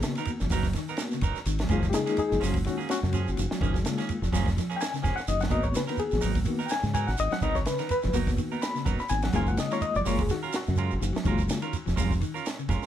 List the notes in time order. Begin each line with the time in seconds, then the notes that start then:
Already playing: A#3 B3 F#4
0.02 C#3, snare, ride bell, shekere
0.15 D#3 B3 D#4 A#4, snare, ride bell, shekere
0.25 ride bell, shekere
0.40 F#1 F3, snare, shekere
0.50 F#1 F#3 B3 D#4 A#4, kick, open hi-hat, shekere
0.63 kick, snare, shekere
0.73 D#3, snare, ride bell, shekere
0.88 B3 D#4 A#4, shekere
0.97 A#3 B3, snare, ride bell, shekere
1.01 F#4
1.11 C#3, snare, shekere
1.21 F#1 F#3 B3 D#4 A#4, kick, ride bell, shekere
1.35 snare, shekere
1.46 G#1 D#3, ride bell, shekere
1.59 F#3, snare, ride bell, shekere
1.69 F#1 D#3 F3 G#3 A#3 C#4 F4 G#4, kick, ride bell, shekere
1.83 kick, snare, shekere
1.90 G4, ride bell, shekere
1.94 C#3 D#4 G#4, snare
2.06 D#3 A#3 C#4 G#4, snare, ride bell, shekere
2.17 D#4 G#4, ride bell, shekere
2.31 F#1 F3, snare, shekere
2.40 F#1 F3 F#3 A#3 C#4 F#4 G#4, snare, open hi-hat, shekere
2.54 kick, ride bell, shekere
2.64 D#3 C#4 F#4, snare, ride bell, shekere
2.78 A#3 C#4 G#4, shekere
2.89 C#4 F#4, snare, ride bell, shekere
3.03 F#2 C#3, snare, shekere
3.13 F3 C#4 G#4, ride bell, shekere
3.28 F#1, shekere
3.37 F#1 D#3, ride bell, shekere
3.51 F#3, snare, shekere
3.61 F#1 D#3 F3 A#3 C#4 G#4, kick, ride bell, shekere
3.74 kick, snare, shekere
3.83 C#3 G#3 A#3 F4, snare, ride bell, shekere
3.98 D#3 A#3 C#4 G#4, snare, ride bell, shekere
4.09 ride bell, shekere
4.22 F1 F3, snare, shekere
4.32 F1 F3 F#3 A#3 C#4 G#4, kick, snare, open hi-hat, shekere
4.46 kick, snare, shekere
4.57 F3, snare, ride bell, shekere
4.70 A#3 C#4 G#4, shekere
4.76 G5
4.81 G#5, snare, ride bell, shekere
4.93 C#3, snare, shekere
5.03 F1 F3 A#3 C#4 G#4 G#5, kick, ride bell, shekere
5.07 snare
5.16 F#5, shekere
5.20 snare
5.28 F#1 D#3 D#5, ride bell, shekere
5.40 F#3 F#5, snare, ride bell, shekere
5.50 G#1 F#3 A#3 B3 D#4 F#4 A#4 D#5, muted clean electric guitar stroke, kick, ride bell, shekere
5.63 C#5, kick, shekere
5.74 C#3 B4, snare, ride bell, shekere
5.87 D#3 B3 D#4 A#4, snare, ride bell, shekere
5.97 G#4, ride bell, shekere
6.11 G#1 F3, snare, shekere
6.21 G#1 F#3 B3 D#4 A#4, open hi-hat, shekere
6.35 kick, ride bell, shekere
6.45 D#3 A#3 B3 F#4, ride bell, shekere
6.59 B3 D#4 A#4, shekere
6.66 G5, shekere
6.71 G#5, snare, ride bell
6.83 G#2 C#3, snare, shekere
6.94 F#3 B3 D#4 A#4 G#5, ride bell, shekere
7.07 G#1 F#5, snare, shekere
7.17 G#1 D#3 D#5, ride bell, shekere
7.31 F#3 F#5, snare, shekere
7.41 G#1 D#3 F#3 B3 D#4 A#4 D#5, kick, ride bell, shekere
7.55 C#5, kick, snare, shekere
7.65 C#3 B4, snare, ride bell, shekere
7.79 D#3 B3 D#4 A#4, snare, ride bell, shekere
7.89 B4, ride bell, shekere
8.02 F#1 F3, snare, shekere
8.13 F#1 F#3 A#3 B3 D#4 F#4 A#4, kick, open hi-hat, shekere
8.27 kick, snare, shekere
8.37 D#3, ride bell, shekere
8.52 B3 D#4 A#4, shekere
8.62 B5, snare, ride bell, shekere
8.75 C#3, snare, shekere
8.85 F#1 F#3 B3 D#4 A#4, kick, ride bell, shekere
8.99 B5, snare, shekere
9.09 G#1 D#3 G#5, snare, ride bell, shekere
9.23 F#3 F#5, snare, ride bell, shekere
9.33 F#1 D#3 G#3 A#3 C#4 F4 A#4 G#5, kick, snare, ride bell, shekere
9.47 F#5, kick, shekere
9.57 C#3 D#5, snare, ride bell, shekere
9.71 D#3 C#4 F4 A#4 C#5, snare, ride bell, shekere
9.81 D#5, ride bell, shekere
9.95 F#1 F3 D5, shekere
10.05 F#1 F#3 G#3 A#3 C#4 F4 A#4 C#5, open hi-hat, shekere
10.19 G#4, kick, ride bell, shekere
10.29 D#3 F#4, snare, ride bell, shekere
10.43 C#4 F4 A#4, shekere
10.53 F#4, snare, ride bell, shekere
10.66 F#2 C#3, snare, shekere
10.76 G#3 C#4 F4 A#4, ride bell, shekere
10.91 F#1, shekere
11.01 F#1 D#3, ride bell, shekere
11.13 F#3, snare, shekere
11.24 F#1 D#3 G#3 A#3 C#4 F4 A#4, kick, ride bell, shekere
11.38 kick, shekere
11.49 C#3, snare, ride bell, shekere
11.62 D#3 C#4 F4 A#4, ride bell, shekere
11.73 ride bell, shekere
11.86 F1 F3, snare, shekere
11.96 F1 F#3 G#3 C#4 F4 A#4, kick, open hi-hat, shekere
12.11 kick, shekere
12.21 D#3, ride bell, shekere
12.34 C#4 F4 A#4, shekere
12.46 snare, ride bell, shekere
12.59 C#3, shekere
12.69 F1 G#3 C#4 F4 A#4, kick, snare, ride bell, shekere
12.82 muted fingered electric bass stroke, snare, shekere